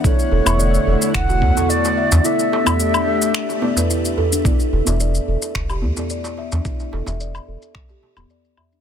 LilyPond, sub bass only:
\new Staff \with { instrumentName = "Sub bass" } { \clef bass \time 4/4 \key e \dorian \tempo 4 = 109 r8 e,,16 e,,8 r16 e,,16 r16 e,,8 e,16 r4 e,16 | r1 | r8 e,,16 e,,8 r16 e,,16 r16 e,,8 e,16 r4 e,16 | r8 e,,16 e,,8 r16 e,,16 r4 d,,16 r4 | }